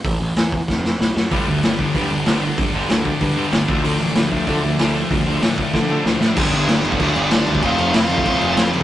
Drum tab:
CC |----------------|----------------|----------------|----------------|
HH |o---o-----------|o---o---o---o---|o---o---o---o---|o---o---o---o---|
SD |----o---o-o-o-o-|----o-------o---|----o-------o---|----o-------o---|
BD |o-----o-o-------|o-----o-o-------|o-----o-o-----o-|------o-o-------|

CC |----------------|x-x-x-x-x-x-x-x-|x-x-x-x-x-x-x-x-|
HH |o---o-----------|----------------|----------------|
SD |----o---o---o-o-|----o-------o---|----o-------o---|
BD |o-----o-o-------|o------oo------o|o------oo-------|